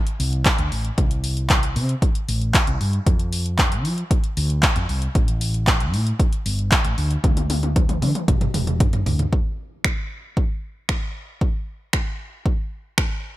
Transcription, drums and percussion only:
0.07 closed hi-hat
0.20 open hi-hat
0.33 closed hi-hat
0.45 kick, clap, closed hi-hat
0.58 closed hi-hat
0.72 open hi-hat
0.85 closed hi-hat
0.98 kick, closed hi-hat
1.11 closed hi-hat
1.24 open hi-hat
1.37 closed hi-hat
1.50 kick, clap, closed hi-hat
1.63 closed hi-hat
1.76 open hi-hat
1.89 closed hi-hat
2.02 kick, closed hi-hat
2.15 closed hi-hat
2.29 open hi-hat
2.42 closed hi-hat
2.54 kick, clap, closed hi-hat
2.67 closed hi-hat
2.81 open hi-hat
2.93 closed hi-hat
3.06 kick, closed hi-hat
3.19 closed hi-hat
3.32 open hi-hat
3.46 closed hi-hat
3.59 kick, clap, closed hi-hat
3.72 closed hi-hat
3.85 open hi-hat
3.98 closed hi-hat
4.11 kick, closed hi-hat
4.24 closed hi-hat
4.37 open hi-hat
4.50 closed hi-hat
4.63 kick, clap, closed hi-hat
4.76 closed hi-hat
4.89 open hi-hat
5.02 closed hi-hat
5.15 kick, closed hi-hat
5.28 closed hi-hat
5.41 open hi-hat
5.54 closed hi-hat
5.67 kick, clap, closed hi-hat
5.80 closed hi-hat
5.94 open hi-hat
6.07 closed hi-hat
6.20 kick, closed hi-hat
6.33 closed hi-hat
6.46 open hi-hat
6.59 closed hi-hat
6.72 kick, clap, closed hi-hat
6.85 closed hi-hat
6.98 open hi-hat
7.11 closed hi-hat
7.24 kick, closed hi-hat, high tom
7.37 closed hi-hat, high tom
7.50 open hi-hat, high tom
7.63 closed hi-hat, high tom
7.76 kick, closed hi-hat, mid tom
7.89 closed hi-hat, mid tom
8.02 open hi-hat, mid tom
8.15 closed hi-hat, mid tom
8.28 kick, closed hi-hat, mid tom
8.41 closed hi-hat, mid tom
8.54 mid tom, open hi-hat
8.67 closed hi-hat, mid tom
8.80 kick, closed hi-hat, floor tom
8.93 closed hi-hat, floor tom
9.06 floor tom, open hi-hat
9.19 closed hi-hat, floor tom
9.33 kick
9.84 finger snap, kick
10.37 kick
10.89 finger snap, kick
11.41 kick
11.93 finger snap, kick
12.46 kick
12.98 finger snap, kick

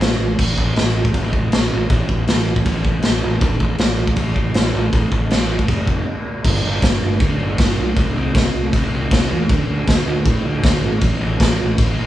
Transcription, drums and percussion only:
0.01 snare, crash
0.39 kick, crash
0.58 kick
0.76 snare, crash
1.05 kick
1.14 kick, crash
1.33 kick
1.52 snare, crash
1.90 kick, crash
2.09 kick
2.27 snare, crash
2.56 kick
2.66 kick, crash
2.85 kick
3.02 snare, crash
3.41 kick, crash
3.60 kick
3.78 snare, crash
4.07 kick
4.16 kick, crash
4.36 kick
4.54 snare, crash
4.93 kick, crash
5.12 kick
5.30 snare, crash
5.59 kick
5.68 kick, crash
5.87 kick
6.45 kick, crash
6.82 kick, snare, crash
7.20 kick, crash
7.58 kick, snare, crash
7.97 kick, crash
8.35 kick, snare, crash
8.73 kick, crash
9.11 kick, snare, crash
9.49 kick, crash
9.88 kick, snare, crash
10.26 kick, crash
10.63 kick, snare, crash
11.01 kick, crash
11.40 kick, snare, crash
11.78 kick, crash

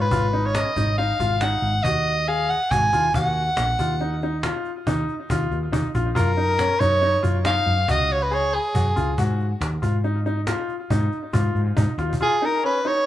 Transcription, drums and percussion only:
0.11 cajon bass
0.33 cajon slap
0.55 cajon slap
0.76 cajon bass
0.98 cajon slap
1.20 cajon bass
1.41 cajon slap
1.63 cajon slap
1.85 cajon bass
2.06 cajon slap
2.27 cajon slap
2.49 cajon slap
2.71 cajon bass
2.93 cajon bass
3.14 cajon bass
3.36 cajon slap
3.57 cajon slap
3.79 cajon bass, cajon slap
4.00 cajon slap
4.22 cajon slap
4.43 cajon slap
4.65 cajon slap
4.87 cajon bass
5.08 cajon slap
5.30 cajon bass
5.51 cajon slap
5.73 cajon bass
5.95 cajon bass, cajon slap
6.16 cajon bass
6.38 cajon slap
6.59 cajon slap
6.81 cajon bass
7.02 cajon slap
7.23 cajon bass, cajon slap
7.45 cajon slap
7.67 cajon slap
7.88 cajon bass, cajon slap
8.10 cajon slap
8.31 cajon slap
8.53 cajon slap
8.75 cajon bass
8.97 cajon bass
9.18 cajon bass
9.40 cajon slap
9.62 cajon slap
9.83 cajon bass
10.04 cajon slap
10.26 cajon slap
10.47 cajon slap
10.69 cajon slap
10.90 cajon bass
11.12 cajon slap
11.34 cajon bass
11.55 cajon slap
11.77 cajon bass
11.99 cajon slap
12.13 cajon bass

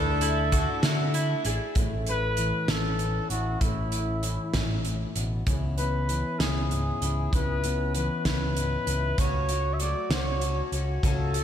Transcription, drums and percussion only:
0.21 closed hi-hat
0.52 kick, closed hi-hat
0.83 snare, closed hi-hat
1.14 closed hi-hat
1.45 closed hi-hat
1.75 kick, closed hi-hat
2.07 closed hi-hat
2.37 closed hi-hat
2.68 snare, closed hi-hat
2.99 closed hi-hat
3.30 closed hi-hat
3.61 kick, closed hi-hat
3.92 closed hi-hat
4.23 closed hi-hat
4.54 kick, snare, closed hi-hat
4.85 closed hi-hat
5.16 closed hi-hat
5.47 kick, closed hi-hat
5.78 closed hi-hat
6.09 closed hi-hat
6.40 snare, closed hi-hat
6.71 closed hi-hat
7.02 closed hi-hat
7.33 kick, closed hi-hat
7.64 closed hi-hat
7.95 closed hi-hat
8.25 kick, snare, closed hi-hat
8.57 closed hi-hat
8.87 closed hi-hat
9.18 kick, closed hi-hat
9.49 closed hi-hat
9.80 closed hi-hat
10.11 snare, closed hi-hat
10.41 closed hi-hat
10.72 closed hi-hat
11.03 kick, closed hi-hat
11.34 closed hi-hat

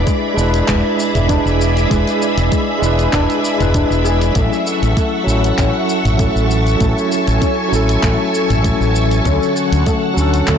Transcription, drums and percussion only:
0.07 kick, closed hi-hat, shaker
0.38 shaker
0.54 closed hi-hat, shaker
0.68 kick, clap, closed hi-hat, shaker
1.00 shaker
1.15 closed hi-hat, mid tom, shaker
1.29 kick, closed hi-hat, shaker
1.47 shaker
1.61 shaker
1.77 closed hi-hat, shaker
1.91 kick, closed hi-hat, shaker
2.07 closed hi-hat, shaker
2.22 shaker
2.38 closed hi-hat, shaker
2.52 kick, closed hi-hat, shaker
2.83 shaker
2.99 closed hi-hat, shaker
3.13 kick, clap, closed hi-hat, shaker
3.30 closed hi-hat, shaker
3.45 shaker
3.60 closed hi-hat, mid tom, shaker
3.74 kick, closed hi-hat, shaker
3.92 shaker
4.05 shaker
4.21 closed hi-hat, shaker
4.35 kick, closed hi-hat, shaker
4.53 shaker
4.67 shaker
4.83 closed hi-hat, shaker
4.97 kick, closed hi-hat, shaker
5.28 shaker
5.44 closed hi-hat, shaker
5.58 kick, clap, closed hi-hat, shaker
5.89 shaker
6.05 closed hi-hat, mid tom, shaker
6.19 kick, closed hi-hat, shaker
6.37 shaker
6.51 shaker
6.67 closed hi-hat, shaker
6.80 kick, closed hi-hat, shaker
6.98 shaker
7.12 shaker
7.27 closed hi-hat, shaker
7.42 kick, closed hi-hat, shaker
7.73 shaker
7.89 closed hi-hat, shaker
8.03 kick, clap, closed hi-hat, shaker
8.34 shaker
8.50 closed hi-hat, mid tom, shaker
8.64 kick, closed hi-hat, shaker
8.82 shaker
8.96 shaker
9.11 closed hi-hat, shaker
9.25 kick, closed hi-hat, shaker
9.43 shaker
9.56 shaker
9.73 closed hi-hat, shaker
9.86 kick, closed hi-hat, shaker
10.18 shaker
10.34 closed hi-hat, shaker
10.47 kick, clap, closed hi-hat, shaker

